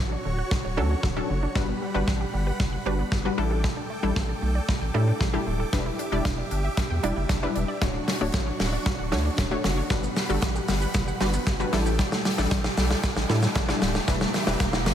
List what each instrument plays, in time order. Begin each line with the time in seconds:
Already playing: synth pluck F#3 C#4 D4 A4, supersaw synth F#4 C#5 C#6
0.00 sub bass A1, synth arpeggio sound D3
0.12 synth arpeggio sound D4
0.25 sub bass D1, synth arpeggio sound D3
0.38 synth arpeggio sound F#4
0.51 synth arpeggio sound D3, kick, snare
0.64 sub bass D1, synth arpeggio sound C#5
0.77 sub bass D2, synth arpeggio sound D3, synth pluck F#3 C#4 D4 A4
0.91 synth arpeggio sound F#3
1.03 sub bass D1, synth arpeggio sound D3, kick, snare
1.16 synth pluck F#3 C#4 D4 A4, synth arpeggio sound C#4
1.30 sub bass F#1, synth arpeggio sound D3
1.43 synth arpeggio sound D4
1.55 sub bass G1, synth pluck G3 D4 F#4 B4, supersaw synth G3 F#5 B5, synth arpeggio sound G3, kick, snare
1.69 synth arpeggio sound B3
1.82 synth arpeggio sound G3
1.94 sub bass G1, synth pluck G3 D4 F#4 B4
2.08 sub bass A1, synth arpeggio sound G3, kick, snare
2.21 synth arpeggio sound G4
2.34 sub bass G1, synth arpeggio sound G3
2.47 synth arpeggio sound B4
2.60 sub bass F#1, synth arpeggio sound G3, kick, snare
2.72 synth arpeggio sound F#5
2.86 sub bass G1, synth arpeggio sound G3, synth pluck G3 D4 F#4 B4
2.99 synth arpeggio sound B3
3.12 sub bass G1, synth arpeggio sound G3, kick, snare
3.25 synth pluck G3 D4 F#4 B4, synth arpeggio sound F#4
3.38 sub bass A1, synth pluck G3 D4 E4 A4, synth arpeggio sound A3, supersaw synth A4 G5 D6
3.51 synth arpeggio sound A4
3.64 synth arpeggio sound A3, kick, snare
3.77 synth arpeggio sound D4
3.90 synth arpeggio sound A3
4.03 sub bass A1, synth pluck G3 D4 E4 A4
4.16 sub bass A1, synth arpeggio sound A3, kick, snare
4.29 synth arpeggio sound A4
4.42 sub bass B1, synth arpeggio sound A3
4.55 synth arpeggio sound D5
4.68 synth arpeggio sound A3, kick, snare
4.81 sub bass A1, synth arpeggio sound G5
4.94 sub bass A2, synth pluck G3 D4 E4 A4, synth arpeggio sound A3
5.08 synth arpeggio sound D4
5.20 sub bass A1, synth arpeggio sound A3, kick, snare
5.33 synth pluck G3 D4 E4 G4, synth arpeggio sound G4
5.46 sub bass D1, synth arpeggio sound A3
5.60 synth arpeggio sound A4
5.73 sub bass E1, synth pluck G3 D4 E4 B4, synth arpeggio sound D4, supersaw synth G4 E5, kick, snare, closed hi-hat
5.86 synth arpeggio sound E4
5.99 synth arpeggio sound D4, closed hi-hat
6.12 sub bass E1, synth pluck G3 D4 E4 D5
6.25 sub bass E1, synth arpeggio sound D4, kick, snare, closed hi-hat
6.38 synth arpeggio sound D5
6.51 sub bass G1, synth arpeggio sound D4, closed hi-hat
6.64 synth arpeggio sound E5
6.77 synth arpeggio sound D4, kick, snare, closed hi-hat
6.90 sub bass E2, synth arpeggio sound G5
7.03 sub bass E1, synth pluck G3 D4 E4 D5, synth arpeggio sound D4, closed hi-hat
7.16 sub bass F#1, synth arpeggio sound E4
7.29 sub bass F#1, synth arpeggio sound D4, kick, snare, closed hi-hat
7.42 synth pluck G3 D4 E4 B4, synth arpeggio sound G4
7.55 sub bass E1, synth arpeggio sound D4, closed hi-hat
7.68 synth arpeggio sound D5
7.81 sub bass D1, synth pluck A3 D4 F#4 C#5, synth arpeggio sound C#4, supersaw synth D4 F#4, kick, snare, closed hi-hat, riser
7.94 synth arpeggio sound D4
8.08 synth arpeggio sound C#4, snare, open hi-hat
8.21 sub bass D1, synth pluck A3 D4 F#4 C#5
8.33 sub bass A1, synth arpeggio sound C#4, kick, snare, clap, closed hi-hat
8.47 synth arpeggio sound C#5
8.60 sub bass D1, synth arpeggio sound C#4, snare, open hi-hat
8.73 synth arpeggio sound D5
8.86 synth arpeggio sound C#4, kick, snare, closed hi-hat
8.99 sub bass D1, synth arpeggio sound F#5
9.12 sub bass D2, synth pluck A3 D4 F#4 C#5, synth arpeggio sound C#4, snare, open hi-hat
9.25 synth arpeggio sound D4
9.38 sub bass D1, synth arpeggio sound C#4, kick, snare, clap, closed hi-hat
9.51 synth pluck A3 D4 F#4 C#5, synth arpeggio sound F#4
9.64 sub bass F#1, synth arpeggio sound C#4, snare, open hi-hat
9.77 synth arpeggio sound C#5
9.90 sub bass G1, synth arpeggio sound G3, synth pluck G3 D4 F#4 B4, supersaw synth G3 B5, kick, snare, closed hi-hat, shaker
10.03 synth arpeggio sound B3, shaker
10.16 synth arpeggio sound G3, snare, open hi-hat, shaker
10.29 sub bass G1, synth pluck G3 D4 F#4 A4, shaker
10.42 sub bass A1, synth arpeggio sound G3, kick, snare, clap, closed hi-hat, shaker
10.56 synth arpeggio sound G4, shaker
10.68 sub bass G1, synth arpeggio sound G3, snare, open hi-hat, shaker
10.82 synth arpeggio sound B4, shaker
10.94 sub bass F#1, synth arpeggio sound G3, kick, snare, closed hi-hat, shaker
11.08 synth arpeggio sound F#5, shaker
11.21 sub bass G1, synth pluck G3 D4 F#4 B4, synth arpeggio sound G3, snare, open hi-hat, shaker
11.33 synth arpeggio sound B3, shaker
11.47 sub bass G1, synth arpeggio sound G3, kick, snare, clap, closed hi-hat, shaker
11.60 synth pluck G3 D4 F#4 B4, synth arpeggio sound F#4, shaker
11.73 sub bass A1, synth pluck G3 D4 E4 A4, synth arpeggio sound G3, supersaw synth A4 G5 D6, snare, open hi-hat, shaker
11.86 synth arpeggio sound G4, shaker
11.99 synth arpeggio sound G3, kick, snare, closed hi-hat, shaker
12.12 synth arpeggio sound A3, snare, shaker
12.25 synth arpeggio sound G3, snare, open hi-hat, shaker
12.38 sub bass A1, synth pluck G3 D4 E4 A4, snare, shaker
12.51 sub bass A1, synth arpeggio sound G3, kick, snare, clap, closed hi-hat, shaker
12.64 synth arpeggio sound G4, snare, shaker
12.77 sub bass B1, synth arpeggio sound G3, snare, open hi-hat, shaker
12.90 synth arpeggio sound A4, snare, shaker
13.03 synth arpeggio sound G3, kick, snare, closed hi-hat, shaker
13.16 sub bass A1, synth arpeggio sound D5, snare, shaker
13.29 sub bass A2, synth arpeggio sound G3, synth pluck G3 D4 E4 A4, snare, open hi-hat, shaker
13.42 synth arpeggio sound A3, snare, shaker
13.55 sub bass A1, synth arpeggio sound G3, kick, snare, clap, closed hi-hat, shaker
13.68 synth pluck G3 D4 E4 A4, synth arpeggio sound D4, snare, shaker
13.82 sub bass D1, synth arpeggio sound G3, snare, open hi-hat, shaker
13.95 synth arpeggio sound G4, snare, shaker
14.08 sub bass E1, synth arpeggio sound E3, synth pluck G3 D4 E4 B4, supersaw synth G4 E5, kick, snare, closed hi-hat, shaker
14.21 synth arpeggio sound G3, snare, shaker
14.34 synth arpeggio sound E3, snare, open hi-hat, shaker
14.47 sub bass E1, synth pluck G3 D4 E4 B4, snare, shaker
14.60 sub bass E1, synth arpeggio sound E3, kick, snare, clap, closed hi-hat, shaker
14.73 synth arpeggio sound E4, snare, shaker
14.86 sub bass G1, synth arpeggio sound E3, snare, open hi-hat, shaker